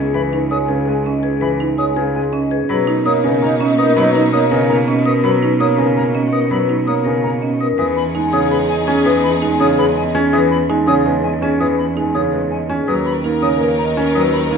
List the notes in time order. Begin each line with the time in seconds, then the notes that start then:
Already playing: C#2 G#4
0.14 E3 B4 B5
0.33 D#4
0.50 G#3 C#5 G#5 D#6
0.69 C#3 G#4 B4
0.87 G#3 G#5
1.04 C#4 D#5
1.23 G#4 B4
1.41 E3 B4 B5
1.60 D#4
1.78 G#3 C#5 G#5 D#6
1.96 C#3 G#4 B4
2.14 G#3 G#5
2.32 C#4 D#5
2.51 G#4 B4
2.69 B2 F#3 A#3 D#4 B4 B5
2.87 D#4
3.05 A#3 D#4 C#5 A#5 D#6
3.23 C#3 D#4 A#4 B4
3.42 A#3 D#4 A#5
3.60 C#4 D#4 D#5
3.78 D#4 A#4 B4 D#6
3.97 F#3 D#4 B4 B5
4.15 D#4
4.33 A#3 D#4 C#5 A#5 D#6
4.51 C#3 D#4 A#4 B4
4.69 A#3 D#4 A#5
4.87 C#4 D#4 D#5
5.06 A#4 B4 D#6
5.24 F#3 B4 B5
5.42 D#4
5.60 A#3 C#5 A#5 D#6
5.78 C#3 A#4 B4
5.97 A#3 A#5
6.15 C#4 D#5
6.33 A#4 B4 D#6
6.51 F#3 B4 B5
6.69 D#4
6.87 A#3 C#5 A#5 D#6
7.05 C#3 A#4 B4
7.24 A#3 A#5
7.42 C#4 D#5
7.60 A#4 B4 D#6
7.78 E2 E3 D#4 G#4 B4 D#6
7.97 B5
8.15 G#3 D#4 G#5
8.33 C#3 G#4 C#5 D#6
8.51 G#3 B4 B5
8.69 D#5 G#5
8.87 C#4 G#4
9.05 E3 B4 D#6
9.24 B5
9.42 G#3 D#4 G#5
9.60 C#3 G#4 C#5 D#6
9.78 G#3 B4 B5
9.97 D#5 G#5
10.15 C#4 G#4
10.33 E3 B4 D#6
10.51 B5
10.69 G#3 D#4 G#5
10.87 C#3 G#4 C#5 D#6
11.06 G#3 B4
11.24 D#5 G#5
11.42 C#4 G#4
11.60 E3 B4 D#6
11.78 B5
11.97 G#3 D#4 G#5
12.14 C#3 G#4 C#5 D#6
12.33 G#3 B4
12.51 D#5 G#5
12.70 C#4 G#4
12.88 D#2 F#3 D#4 A#4 B4 D#6
13.06 B5
13.24 A#3 D#4 A#5
13.42 C#3 A#4 C#5 D#6
13.60 A#3 B4
13.78 D#5 A#5
13.97 C#4 A#4
14.15 F#3 B4 D#6
14.33 B5
14.51 A#3 D#4 A#5